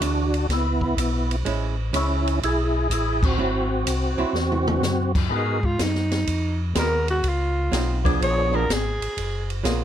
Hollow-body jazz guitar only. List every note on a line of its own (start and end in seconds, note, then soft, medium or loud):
0.01 0.30 E3 soft
0.01 0.30 G#3 soft
0.01 0.30 D4 medium
0.01 0.30 F#4 medium
1.45 1.74 G#3 medium
1.45 1.75 C#4 medium
1.45 1.75 E4 medium
1.93 2.22 G#3 medium
1.93 2.22 C#4 medium
1.93 2.23 E4 medium
3.38 3.67 F#3 medium
3.38 3.67 C4 medium
3.38 3.68 E4 medium
4.18 4.32 F#3 medium
4.18 4.33 C4 medium
4.18 4.33 E4 medium
6.76 7.24 G#3 medium
6.76 7.24 B3 medium
6.76 7.24 F#4 medium
6.76 7.25 A#4 medium
7.72 8.01 F#3 medium
7.72 8.01 C4 medium
7.72 8.01 D#4 medium
8.05 8.46 F3 medium
8.05 8.46 B3 medium
8.05 8.47 D4 medium
8.53 8.67 F3 medium
8.53 8.67 B3 medium
8.53 8.67 D4 medium
9.64 9.84 F#3 medium
9.64 9.84 A#3 medium
9.64 9.84 F4 medium
9.64 9.84 G#4 medium